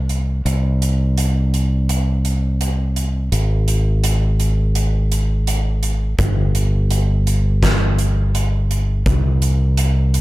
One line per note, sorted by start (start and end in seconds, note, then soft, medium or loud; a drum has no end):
0.00 0.41 C2 medium
0.09 closed hi-hat soft
0.45 3.29 C2 medium
0.45 closed hi-hat medium
0.82 closed hi-hat soft
1.18 closed hi-hat medium
1.54 closed hi-hat soft
1.89 closed hi-hat medium
2.25 closed hi-hat soft
2.61 closed hi-hat medium
2.96 closed hi-hat soft
3.32 6.15 G#1 medium
3.32 closed hi-hat medium
3.68 closed hi-hat soft
4.04 closed hi-hat medium
4.40 closed hi-hat soft
4.75 closed hi-hat medium
5.12 closed hi-hat medium
5.47 closed hi-hat medium
5.83 closed hi-hat soft
6.19 9.02 G1 medium
6.19 kick medium
6.19 closed hi-hat medium
6.55 closed hi-hat medium
6.91 closed hi-hat medium
7.27 closed hi-hat soft
7.63 kick medium
7.63 snare medium
7.63 closed hi-hat medium
7.99 closed hi-hat soft
8.35 closed hi-hat medium
8.71 closed hi-hat soft
9.06 10.21 C2 medium
9.06 kick medium
9.06 closed hi-hat medium
9.42 closed hi-hat soft
9.77 closed hi-hat medium
10.14 closed hi-hat soft